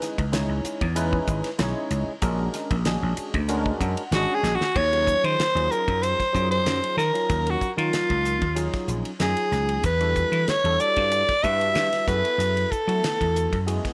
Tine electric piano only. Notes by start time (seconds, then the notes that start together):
Already playing: G#3 C#4 D#4 E4 B4
0.32 G#3 C#4 D#4 E4 C#5
0.95 G#3 C#4 D#4 E4 B4
1.58 G#3 C#4 D#4 E4 C#5
2.22 G#3 C#4 D4 F#4 A#4
2.85 G#3 C#4 D4 F#4 G#4
3.48 G#3 C#4 D4 F#4 A#4
3.81 F#5
4.12 G#3 C#4 D4 F#4 G#4 G#5
4.92 F#3 C#4 D#4 F4 G#4
5.55 F#3 C#4 D#4 F4 G#4
6.32 F#3 C#4 D#4 F4 G#4
7.13 F#3 C#4 D#4 F4 A#4
7.76 F#3 C#4 D#4 F4 A#4
8.55 F#3 C#4 D#4 F4 G#4
9.19 F#3 C#4 D#4 F4 G#4
10.00 G3 D4 E4 F#4 A4
10.65 G3 D4 E4 F#4 A4
11.43 G3 D4 E4 F#4 B4
12.07 B3 E4 F#4 G#4 A4
12.87 A3 B3 E4 F#4 A4
13.67 G#3 B3 E4 F#4 G#4